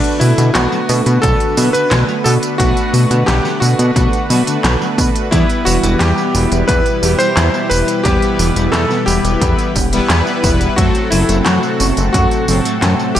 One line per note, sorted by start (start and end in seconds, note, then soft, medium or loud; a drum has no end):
0.00 5.28 D3 medium
0.00 1.53 A3 medium
0.00 5.28 A3 medium
0.00 5.28 B3 medium
0.00 0.21 D4 medium
0.00 1.53 D4 medium
0.00 1.53 F#4 medium
0.00 1.53 B4 medium
0.00 5.28 F#5 medium
0.00 closed hi-hat soft
0.00 tambourine soft
0.20 0.30 B2 loud
0.20 0.34 B2 medium
0.20 0.55 E4 medium
0.20 open hi-hat medium
0.20 tambourine medium
0.38 0.51 B2 medium
0.38 0.47 D3 medium
0.38 closed hi-hat medium
0.38 tambourine soft
0.54 0.68 B1 loud
0.54 1.25 F#4 loud
0.54 snare loud
0.54 clap loud
0.54 closed hi-hat medium
0.54 tambourine soft
0.72 0.77 F#3 medium
0.72 tambourine soft
0.89 1.02 B2 loud
0.89 0.94 B3 medium
0.89 open hi-hat medium
0.89 tambourine medium
1.06 1.19 B2 medium
1.06 closed hi-hat medium
1.06 tambourine soft
1.22 1.36 B1 loud
1.22 1.36 B3 medium
1.22 1.70 A4 loud
1.22 kick loud
1.22 closed hi-hat medium
1.22 tambourine soft
1.40 closed hi-hat soft
1.40 tambourine soft
1.57 1.70 B2 medium
1.57 1.66 F#3 medium
1.57 2.56 A3 medium
1.57 2.56 D4 medium
1.57 2.56 F#4 medium
1.57 2.56 B4 medium
1.57 open hi-hat medium
1.57 tambourine medium
1.73 1.83 D3 medium
1.73 2.21 B4 loud
1.73 closed hi-hat medium
1.73 tambourine soft
1.91 2.04 B1 medium
1.91 snare loud
1.91 clap loud
1.91 closed hi-hat medium
1.91 tambourine soft
2.08 2.14 F#3 medium
2.08 tambourine soft
2.24 2.38 B2 medium
2.24 2.31 B3 medium
2.24 2.32 A4 loud
2.24 open hi-hat medium
2.24 tambourine medium
2.43 closed hi-hat medium
2.43 tambourine soft
2.58 2.72 B1 loud
2.58 2.72 B2 medium
2.58 4.26 A3 medium
2.58 4.26 D4 medium
2.58 3.29 F#4 loud
2.58 4.26 B4 medium
2.58 4.26 F#5 medium
2.58 kick loud
2.58 closed hi-hat medium
2.58 tambourine soft
2.77 closed hi-hat soft
2.77 tambourine soft
2.93 3.02 B2 loud
2.93 3.06 B2 medium
2.93 open hi-hat medium
2.93 tambourine medium
3.11 3.23 B2 medium
3.11 3.19 D3 medium
3.11 closed hi-hat medium
3.11 tambourine soft
3.26 3.40 B1 loud
3.26 3.59 G4 loud
3.26 snare loud
3.26 clap loud
3.26 closed hi-hat medium
3.26 tambourine soft
3.45 3.50 F#3 medium
3.45 snare soft
3.45 tambourine soft
3.60 3.74 B2 loud
3.60 3.67 B3 medium
3.60 4.93 F#4 medium
3.60 open hi-hat medium
3.60 tambourine medium
3.79 3.91 B2 medium
3.79 closed hi-hat medium
3.79 tambourine soft
3.96 4.08 B1 loud
3.96 4.09 B3 medium
3.96 kick loud
3.96 closed hi-hat medium
3.96 tambourine soft
4.13 closed hi-hat soft
4.13 tambourine soft
4.30 4.43 B2 medium
4.30 4.39 F#3 medium
4.30 5.28 A3 medium
4.30 5.28 D4 medium
4.30 5.28 F#4 medium
4.30 5.28 B4 medium
4.30 open hi-hat medium
4.30 tambourine medium
4.47 4.56 D3 medium
4.47 closed hi-hat medium
4.47 tambourine soft
4.64 4.77 B1 medium
4.64 snare loud
4.64 clap medium
4.64 closed hi-hat medium
4.64 tambourine soft
4.81 4.86 F#3 medium
4.81 tambourine soft
4.98 5.11 B2 medium
4.98 5.03 B3 medium
4.98 kick loud
4.98 open hi-hat medium
4.98 tambourine medium
5.16 closed hi-hat medium
5.16 tambourine soft
5.31 5.45 E2 loud
5.31 10.74 B2 medium
5.31 10.74 E3 medium
5.31 5.45 E3 medium
5.31 10.74 G3 medium
5.31 6.99 G3 medium
5.31 6.99 B3 medium
5.31 5.63 E4 medium
5.31 10.74 E4 medium
5.31 6.99 E4 medium
5.31 6.99 B4 medium
5.31 kick loud
5.31 closed hi-hat medium
5.31 tambourine soft
5.50 closed hi-hat soft
5.50 tambourine soft
5.65 5.79 E1 medium
5.65 5.75 E3 loud
5.65 5.97 F#4 medium
5.65 open hi-hat medium
5.65 tambourine medium
5.83 5.96 E1 medium
5.83 5.92 G3 medium
5.83 closed hi-hat medium
5.83 tambourine soft
5.99 6.13 E2 loud
5.99 6.70 G4 loud
5.99 snare loud
5.99 clap medium
5.99 closed hi-hat medium
5.99 tambourine soft
6.18 6.23 B3 medium
6.18 tambourine soft
6.35 6.47 E1 loud
6.35 6.40 E4 medium
6.35 open hi-hat medium
6.35 tambourine medium
6.52 6.64 E1 medium
6.52 closed hi-hat medium
6.52 tambourine soft
6.68 6.81 E2 medium
6.68 6.82 E4 medium
6.68 7.21 B4 loud
6.68 kick loud
6.68 closed hi-hat medium
6.68 tambourine soft
6.86 closed hi-hat soft
6.86 tambourine soft
7.03 7.15 E1 medium
7.03 8.01 G3 medium
7.03 7.11 B3 medium
7.03 8.01 E4 medium
7.03 8.01 G4 medium
7.03 open hi-hat medium
7.03 tambourine medium
7.19 7.28 G3 medium
7.19 7.72 C5 loud
7.19 closed hi-hat medium
7.19 tambourine soft
7.37 7.49 E2 medium
7.37 snare loud
7.37 clap medium
7.37 closed hi-hat medium
7.37 tambourine soft
7.54 7.59 B3 medium
7.54 tambourine soft
7.70 7.83 E1 medium
7.70 7.76 E4 medium
7.70 8.05 B4 loud
7.70 open hi-hat medium
7.70 tambourine medium
7.88 closed hi-hat medium
7.88 tambourine soft
8.04 8.18 E2 loud
8.04 8.18 E3 medium
8.04 9.71 G3 medium
8.04 9.71 B3 medium
8.04 9.71 E4 medium
8.04 8.75 G4 loud
8.04 9.71 B4 medium
8.04 kick loud
8.04 closed hi-hat medium
8.04 tambourine soft
8.22 closed hi-hat soft
8.22 tambourine soft
8.39 8.52 E1 medium
8.39 8.48 E3 loud
8.39 open hi-hat medium
8.39 tambourine medium
8.56 8.69 E1 medium
8.56 8.65 G3 medium
8.56 closed hi-hat medium
8.56 tambourine soft
8.72 8.86 E2 loud
8.72 9.08 A4 loud
8.72 snare loud
8.72 clap medium
8.72 closed hi-hat medium
8.72 tambourine soft
8.90 8.95 B3 medium
8.90 snare soft
8.90 tambourine soft
9.06 9.20 E1 loud
9.06 9.12 E4 medium
9.06 10.39 G4 loud
9.06 open hi-hat medium
9.06 tambourine medium
9.24 9.37 E1 medium
9.24 closed hi-hat medium
9.24 tambourine soft
9.41 9.54 E2 loud
9.41 9.54 E4 medium
9.41 kick loud
9.41 closed hi-hat medium
9.41 tambourine soft
9.59 closed hi-hat soft
9.59 tambourine soft
9.75 10.00 E1 loud
9.75 9.84 B3 medium
9.75 kick medium
9.75 open hi-hat medium
9.75 tambourine medium
9.93 10.01 G3 medium
9.93 10.74 G3 loud
9.93 10.74 B3 medium
9.93 10.74 E4 loud
9.93 10.74 B4 loud
9.93 closed hi-hat medium
9.93 tambourine soft
10.10 10.22 E2 medium
10.10 snare loud
10.10 clap medium
10.10 closed hi-hat medium
10.10 tambourine soft
10.27 10.32 B3 medium
10.27 tambourine soft
10.44 10.69 E1 loud
10.44 10.49 E4 medium
10.44 kick loud
10.44 open hi-hat medium
10.44 tambourine medium
10.61 closed hi-hat medium
10.61 tambourine soft
10.76 10.90 F#2 loud
10.76 13.20 A2 medium
10.76 13.20 C3 medium
10.76 10.91 F#3 medium
10.76 12.44 F#3 medium
10.76 13.20 A3 medium
10.76 12.44 A3 medium
10.76 13.20 C4 medium
10.76 12.44 C4 medium
10.76 11.09 F#4 medium
10.76 12.44 A4 medium
10.76 13.20 F#5 medium
10.76 kick loud
10.76 closed hi-hat medium
10.76 tambourine soft
10.95 closed hi-hat soft
10.95 tambourine soft
11.11 11.24 F#1 medium
11.11 11.20 F#3 loud
11.11 11.43 E4 medium
11.11 open hi-hat medium
11.11 tambourine medium
11.29 11.42 F#1 medium
11.29 11.37 A3 medium
11.29 closed hi-hat medium
11.29 tambourine soft
11.45 11.59 F#2 loud
11.45 12.11 F#4 medium
11.45 snare loud
11.45 clap medium
11.45 closed hi-hat medium
11.45 tambourine soft
11.63 11.68 C4 medium
11.63 tambourine soft
11.80 11.93 F#1 loud
11.80 11.85 F#4 medium
11.80 open hi-hat medium
11.80 tambourine medium
11.97 12.10 F#1 medium
11.97 closed hi-hat medium
11.97 tambourine soft
12.13 12.27 F#2 loud
12.13 13.19 F#4 medium
12.13 12.27 F#4 medium
12.13 kick loud
12.13 closed hi-hat medium
12.13 tambourine soft
12.31 closed hi-hat soft
12.31 tambourine soft
12.48 12.61 F#1 medium
12.48 13.20 F#3 medium
12.48 13.20 A3 medium
12.48 12.57 C4 medium
12.48 13.20 C4 medium
12.48 13.20 A4 medium
12.48 open hi-hat medium
12.48 tambourine medium
12.65 12.74 A3 medium
12.65 closed hi-hat soft
12.65 tambourine soft
12.82 12.95 F#2 medium
12.82 snare loud
12.82 clap medium
12.82 closed hi-hat medium
12.82 tambourine soft
12.99 13.05 C4 medium
12.99 tambourine soft
13.15 13.20 F#1 medium
13.15 13.20 F#4 medium
13.15 13.20 G4 medium
13.15 open hi-hat medium
13.15 tambourine medium